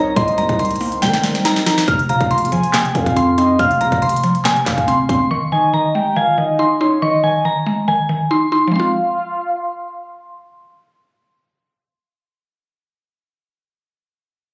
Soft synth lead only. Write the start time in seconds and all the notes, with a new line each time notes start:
Already playing: C#5
0.16 D#5
2.09 F5
2.52 G#5
2.74 G5
2.95 F5
3.38 D#5
3.59 F5
4.45 G5
4.67 F5
5.52 D#5
5.95 G5
6.16 F5
6.38 D#5
6.81 C#5
7.02 D#5
8.74 F5